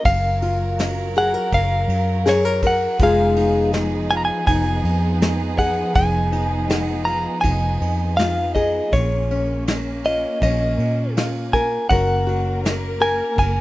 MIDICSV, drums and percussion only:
0, 0, Header, 1, 2, 480
1, 0, Start_track
1, 0, Tempo, 740741
1, 33, Time_signature, 4, 2, 24, 8
1, 8817, End_track
2, 0, Start_track
2, 0, Title_t, "Drums"
2, 33, Note_on_c, 9, 51, 65
2, 34, Note_on_c, 9, 36, 91
2, 98, Note_off_c, 9, 36, 0
2, 98, Note_off_c, 9, 51, 0
2, 271, Note_on_c, 9, 51, 48
2, 336, Note_off_c, 9, 51, 0
2, 511, Note_on_c, 9, 51, 74
2, 517, Note_on_c, 9, 38, 83
2, 575, Note_off_c, 9, 51, 0
2, 582, Note_off_c, 9, 38, 0
2, 748, Note_on_c, 9, 51, 48
2, 813, Note_off_c, 9, 51, 0
2, 987, Note_on_c, 9, 51, 71
2, 988, Note_on_c, 9, 36, 65
2, 1052, Note_off_c, 9, 51, 0
2, 1053, Note_off_c, 9, 36, 0
2, 1226, Note_on_c, 9, 51, 52
2, 1291, Note_off_c, 9, 51, 0
2, 1465, Note_on_c, 9, 51, 70
2, 1472, Note_on_c, 9, 38, 79
2, 1530, Note_off_c, 9, 51, 0
2, 1537, Note_off_c, 9, 38, 0
2, 1700, Note_on_c, 9, 51, 55
2, 1702, Note_on_c, 9, 36, 66
2, 1765, Note_off_c, 9, 51, 0
2, 1767, Note_off_c, 9, 36, 0
2, 1941, Note_on_c, 9, 36, 89
2, 1942, Note_on_c, 9, 51, 71
2, 2006, Note_off_c, 9, 36, 0
2, 2006, Note_off_c, 9, 51, 0
2, 2179, Note_on_c, 9, 51, 56
2, 2244, Note_off_c, 9, 51, 0
2, 2416, Note_on_c, 9, 51, 69
2, 2422, Note_on_c, 9, 38, 83
2, 2481, Note_off_c, 9, 51, 0
2, 2487, Note_off_c, 9, 38, 0
2, 2659, Note_on_c, 9, 51, 46
2, 2723, Note_off_c, 9, 51, 0
2, 2898, Note_on_c, 9, 36, 75
2, 2900, Note_on_c, 9, 51, 72
2, 2963, Note_off_c, 9, 36, 0
2, 2965, Note_off_c, 9, 51, 0
2, 3141, Note_on_c, 9, 51, 51
2, 3206, Note_off_c, 9, 51, 0
2, 3378, Note_on_c, 9, 51, 58
2, 3384, Note_on_c, 9, 38, 88
2, 3443, Note_off_c, 9, 51, 0
2, 3449, Note_off_c, 9, 38, 0
2, 3618, Note_on_c, 9, 36, 64
2, 3622, Note_on_c, 9, 51, 53
2, 3683, Note_off_c, 9, 36, 0
2, 3686, Note_off_c, 9, 51, 0
2, 3859, Note_on_c, 9, 36, 96
2, 3861, Note_on_c, 9, 51, 65
2, 3924, Note_off_c, 9, 36, 0
2, 3926, Note_off_c, 9, 51, 0
2, 4098, Note_on_c, 9, 51, 47
2, 4163, Note_off_c, 9, 51, 0
2, 4338, Note_on_c, 9, 51, 66
2, 4345, Note_on_c, 9, 38, 98
2, 4403, Note_off_c, 9, 51, 0
2, 4410, Note_off_c, 9, 38, 0
2, 4580, Note_on_c, 9, 51, 45
2, 4645, Note_off_c, 9, 51, 0
2, 4819, Note_on_c, 9, 36, 71
2, 4821, Note_on_c, 9, 51, 67
2, 4884, Note_off_c, 9, 36, 0
2, 4886, Note_off_c, 9, 51, 0
2, 5064, Note_on_c, 9, 51, 50
2, 5129, Note_off_c, 9, 51, 0
2, 5304, Note_on_c, 9, 51, 61
2, 5310, Note_on_c, 9, 38, 78
2, 5368, Note_off_c, 9, 51, 0
2, 5375, Note_off_c, 9, 38, 0
2, 5544, Note_on_c, 9, 36, 61
2, 5546, Note_on_c, 9, 51, 47
2, 5609, Note_off_c, 9, 36, 0
2, 5611, Note_off_c, 9, 51, 0
2, 5786, Note_on_c, 9, 36, 90
2, 5787, Note_on_c, 9, 51, 74
2, 5850, Note_off_c, 9, 36, 0
2, 5851, Note_off_c, 9, 51, 0
2, 6029, Note_on_c, 9, 51, 50
2, 6094, Note_off_c, 9, 51, 0
2, 6267, Note_on_c, 9, 51, 71
2, 6274, Note_on_c, 9, 38, 85
2, 6332, Note_off_c, 9, 51, 0
2, 6339, Note_off_c, 9, 38, 0
2, 6511, Note_on_c, 9, 51, 49
2, 6576, Note_off_c, 9, 51, 0
2, 6752, Note_on_c, 9, 36, 70
2, 6753, Note_on_c, 9, 51, 74
2, 6816, Note_off_c, 9, 36, 0
2, 6818, Note_off_c, 9, 51, 0
2, 6995, Note_on_c, 9, 51, 55
2, 7060, Note_off_c, 9, 51, 0
2, 7236, Note_on_c, 9, 51, 67
2, 7243, Note_on_c, 9, 38, 79
2, 7301, Note_off_c, 9, 51, 0
2, 7308, Note_off_c, 9, 38, 0
2, 7474, Note_on_c, 9, 36, 65
2, 7476, Note_on_c, 9, 51, 49
2, 7539, Note_off_c, 9, 36, 0
2, 7541, Note_off_c, 9, 51, 0
2, 7715, Note_on_c, 9, 36, 89
2, 7718, Note_on_c, 9, 51, 59
2, 7780, Note_off_c, 9, 36, 0
2, 7783, Note_off_c, 9, 51, 0
2, 7960, Note_on_c, 9, 51, 50
2, 8024, Note_off_c, 9, 51, 0
2, 8198, Note_on_c, 9, 51, 62
2, 8204, Note_on_c, 9, 38, 94
2, 8262, Note_off_c, 9, 51, 0
2, 8269, Note_off_c, 9, 38, 0
2, 8435, Note_on_c, 9, 51, 46
2, 8500, Note_off_c, 9, 51, 0
2, 8671, Note_on_c, 9, 51, 61
2, 8672, Note_on_c, 9, 36, 74
2, 8736, Note_off_c, 9, 36, 0
2, 8736, Note_off_c, 9, 51, 0
2, 8817, End_track
0, 0, End_of_file